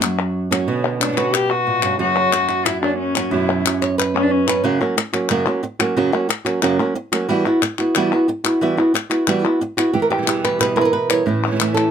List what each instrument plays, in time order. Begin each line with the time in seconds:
Already playing: nylon-string guitar F#2
0.01 cello F#3, nylon-string guitar F#4, muted nylon-string guitar stroke, clap
0.51 nylon-string guitar F#3 A#3 C#4 F#4, clap
0.67 nylon-string guitar B2 D3 B3 C#4 F#4
1.00 nylon-string guitar D3 B3 C#4 F#4, cello D4, clap
1.04 nylon-string guitar D3 B3 F#4
1.09 nylon-string guitar D3 B3 C#4 F#4
1.13 nylon-string guitar C#4 F#4, cello F#4
1.17 nylon-string guitar B2 D3 B3 C#4 F#4 B4, clap
1.33 nylon-string guitar F#4, cello G4, muted nylon-string guitar stroke, clap
1.50 cello F#4
1.67 nylon-string guitar A#2
1.83 nylon-string guitar G2 B3 C#4 F#4, clap
1.99 nylon-string guitar F#2 C#3 F#3 A#3 C#4 F#4, cello F#4
2.32 nylon-string guitar F#3 A#3 C#4 F#4, clap
2.49 nylon-string guitar F#4, clap
2.65 cello E4, nylon-string guitar F#4, muted nylon-string guitar stroke, clap
2.82 nylon-string guitar F#3 A#3 C#4 F#4, cello D4
2.98 cello C#4
3.15 nylon-string guitar F#3 A#3 C#4 F#4, clap
3.31 nylon-string guitar F#2 B2 F#3 B3 C#4 F#4, cello E4
3.65 nylon-string guitar F#3 B3 C#4 F#4, clap
3.82 nylon-string guitar C#5, clap
3.98 nylon-string guitar B4, muted nylon-string guitar stroke, clap
4.14 nylon-string guitar F#3 B3 C#4 F#4, cello C#4
4.22 cello D4
4.31 cello C#4
4.47 nylon-string guitar F#3 B3 C#4 F#4 B4, clap
4.64 nylon-string guitar F#2 C#3 F#3 A#3 C#4 F#4
4.80 nylon-string guitar F#3 A#3 C#4 F#4
4.97 muted nylon-string guitar stroke, clap
5.13 nylon-string guitar F#3 A#3 C#4 F#4, clap
5.29 nylon-string guitar F#2 C#3 F#3 A#3 C#4 F#4, clap
5.46 nylon-string guitar F#3 A#3 C#4 F#4
5.63 muted nylon-string guitar stroke
5.79 nylon-string guitar F#3 A#3 C#4 F#4, clap
5.97 nylon-string guitar F#2 C#3 F#3 A#3 C#4 F#4
6.12 nylon-string guitar F#3 A#3 C#4 F#4
6.29 muted nylon-string guitar stroke, clap
6.45 nylon-string guitar F#3 A#3 C#4 F#4, clap
6.62 nylon-string guitar F#2 C#3 F#3 A#3 C#4 F#4, clap
6.79 nylon-string guitar F#3 A#3 C#4 F#4
6.95 muted nylon-string guitar stroke
7.12 nylon-string guitar F#3 A#3 C#4 F#4, clap
7.29 nylon-string guitar E3 G3 B3 E4 F#4
7.45 nylon-string guitar B3 E4 F#4
7.62 muted nylon-string guitar stroke, clap
7.78 nylon-string guitar B3 E4 F#4, clap
7.95 nylon-string guitar E3 G3 B3 E4 F#4, clap
8.13 nylon-string guitar B3 E4 F#4
8.28 muted nylon-string guitar stroke
8.44 nylon-string guitar B3 E4 F#4, clap
8.61 nylon-string guitar E3 G3 B3 E4 F#4
8.77 nylon-string guitar B3 E4 F#4
8.94 muted nylon-string guitar stroke, clap
9.10 nylon-string guitar B3 E4 F#4, clap
9.27 nylon-string guitar E3 G3 B3 E4 F#4, clap
9.44 nylon-string guitar B3 E4 F#4
9.61 muted nylon-string guitar stroke
9.77 nylon-string guitar B3 E4 F#4, clap
9.93 nylon-string guitar E3 E4 G4, muted nylon-string guitar stroke
10.02 nylon-string guitar A#4
10.10 nylon-string guitar G4
10.18 nylon-string guitar B2 E3 G3 B3 E4
10.22 nylon-string guitar B2 E3 G3 B3 E4
10.27 nylon-string guitar E2 B2 E3 G3 B3 E4, clap
10.44 nylon-string guitar B4, clap
10.59 nylon-string guitar E2 B2 E3 G3 B3 E4 B4, clap
10.76 nylon-string guitar E3 G3 B3 E4 A#4
10.81 nylon-string guitar A#4 B4
10.93 nylon-string guitar B4, muted nylon-string guitar stroke
11.10 nylon-string guitar E3 G3 B3 E4 C#5, clap
11.26 nylon-string guitar A2 E3 C#4 E4, muted nylon-string guitar stroke
11.46 nylon-string guitar E3 A3 C#4 E4
11.51 nylon-string guitar E3 A3 C#4 E4
11.55 nylon-string guitar E3 A3 C#4 E4
11.60 nylon-string guitar A2 E3 A3 C#4 E4, clap
11.74 nylon-string guitar A4, clap